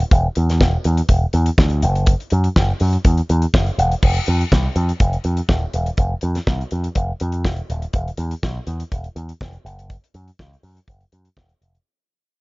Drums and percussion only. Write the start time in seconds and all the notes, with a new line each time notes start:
0.00 closed hi-hat
0.11 kick, closed hi-hat
0.35 closed hi-hat
0.50 snare, closed hi-hat
0.61 kick, snare
0.84 closed hi-hat
0.97 closed hi-hat
1.09 kick, closed hi-hat
1.33 closed hi-hat
1.46 closed hi-hat
1.58 kick, snare
1.70 closed hi-hat
1.82 closed hi-hat
1.96 closed hi-hat
2.06 kick, closed hi-hat
2.20 closed hi-hat
2.30 closed hi-hat
2.44 closed hi-hat
2.56 kick, snare
2.80 open hi-hat
2.93 closed hi-hat
3.05 kick, closed hi-hat
3.17 closed hi-hat
3.29 closed hi-hat
3.42 closed hi-hat
3.54 kick, snare
3.66 closed hi-hat
3.79 closed hi-hat
3.92 closed hi-hat
4.03 kick, crash
4.26 closed hi-hat
4.41 closed hi-hat
4.52 kick, snare
4.76 closed hi-hat
4.89 closed hi-hat
5.00 kick, closed hi-hat
5.13 closed hi-hat
5.24 closed hi-hat
5.37 closed hi-hat
5.49 kick, snare
5.74 closed hi-hat
5.86 closed hi-hat
5.97 kick, closed hi-hat
6.21 closed hi-hat
6.35 snare, closed hi-hat
6.47 kick, snare
6.61 closed hi-hat
6.71 closed hi-hat
6.84 closed hi-hat
6.95 kick, closed hi-hat
7.20 closed hi-hat
7.32 closed hi-hat
7.45 kick, snare
7.56 closed hi-hat
7.70 closed hi-hat
7.82 closed hi-hat
7.93 kick, closed hi-hat
8.08 closed hi-hat
8.17 closed hi-hat
8.31 closed hi-hat
8.43 kick, snare
8.67 closed hi-hat
8.80 closed hi-hat
8.92 kick, closed hi-hat
9.04 closed hi-hat
9.16 closed hi-hat
9.29 closed hi-hat
9.41 kick, snare
9.53 closed hi-hat
9.66 closed hi-hat
9.79 closed hi-hat
9.90 kick, closed hi-hat
10.04 closed hi-hat
10.14 closed hi-hat
10.28 closed hi-hat
10.39 kick, snare
10.53 closed hi-hat
10.63 open hi-hat
10.77 closed hi-hat
10.88 kick, closed hi-hat
11.01 closed hi-hat
11.12 closed hi-hat
11.25 closed hi-hat
11.37 kick, snare
11.49 closed hi-hat
11.62 closed hi-hat
11.75 closed hi-hat